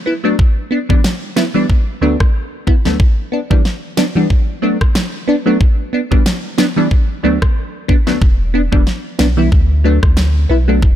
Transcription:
0.06 synth stab B3 E4
0.24 synth stab F#3 A3 B3 D4
0.39 kick
0.71 synth stab B3 D4
0.89 synth stab E3 G3 B3 D4, kick
1.04 snare
1.36 synth stab B3 E4, snare
1.54 synth stab E3 G3 B3 D4
1.70 kick
2.01 synth stab D2 F#3 A3 B3 D4
2.20 kick, cross-stick
2.67 synth stab B3 E4, kick
2.85 synth stab D2 F#3 A3 B3 D4, snare
3.00 kick
3.32 synth stab B3 D4
3.50 synth stab E3 G3 B3 D4, kick
3.65 snare
3.97 synth stab B3 D4, snare
4.15 synth stab E3 G3 B3 D4
4.30 kick
4.62 synth stab F#3 A3 B3 D4
4.81 kick, cross-stick
4.95 snare
5.28 synth stab B3 D4
5.46 synth stab F#3 A3 B3 D4
5.61 kick
5.93 synth stab B3 D4
6.11 synth stab E3 G3 B3 D4, kick
6.26 snare
6.58 synth stab B3 D4, snare
6.76 synth stab E3 G3 B3 D4
6.91 kick
7.23 synth stab D2 F#3 A3 B3 D4
7.42 kick, cross-stick
7.88 synth stab B3 D4, kick
8.07 synth stab D2 F#3 A3 B3 D4, snare
8.22 sub bass E1, kick
8.54 synth stab B3 D4
8.72 sub bass E1, synth stab E3 G3 B3 D4, kick
8.87 snare
9.19 sub bass B1, synth stab B3 D4, snare
9.37 synth stab E3 G3 B3 E4
9.52 sub bass D2, kick
9.84 synth stab F#3 A3 B3 D4
10.03 sub bass D2, kick, cross-stick
10.17 snare
10.49 sub bass B1, synth stab B3 E4
10.68 synth stab F#3 A3 B3 D4
10.82 sub bass E1, kick

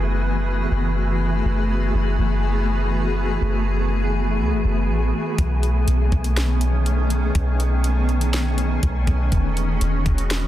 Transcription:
Already playing: 808-style bass F#1, ambient pad E3 A3 B3 F#4 G#4, synth texture A3 E4 B4 G#5
0.72 808-style bass F#1
1.45 808-style bass F#1
1.94 808-style bass F#1
2.19 808-style bass F#1
3.42 808-style bass F#1
4.40 808-style bass C#2
4.52 808-style bass F#1
4.65 808-style bass F#1
4.89 808-style bass A1
5.38 808-style bass B1, ambient pad D#3 C#4, synth texture D#4 C#5, kick, closed hi-hat
5.63 closed hi-hat
5.87 808-style bass B1, closed hi-hat
6.12 808-style bass B1, kick, closed hi-hat
6.24 closed hi-hat
6.37 snare, closed hi-hat
6.61 closed hi-hat
6.86 closed hi-hat
7.10 closed hi-hat
7.35 808-style bass B1, ambient pad C#4, kick, closed hi-hat
7.60 closed hi-hat
7.84 closed hi-hat
8.09 closed hi-hat
8.21 closed hi-hat
8.34 snare, closed hi-hat
8.58 closed hi-hat
8.83 808-style bass B1, kick, closed hi-hat
9.07 808-style bass B1, kick, closed hi-hat
9.32 808-style bass E1, ambient pad E3 G#3 B3 F#4, synth texture F#4 D#5 G#5, kick, closed hi-hat
9.57 closed hi-hat
9.81 808-style bass E1, closed hi-hat
10.06 808-style bass E1, kick, closed hi-hat
10.18 closed hi-hat
10.30 snare, closed hi-hat

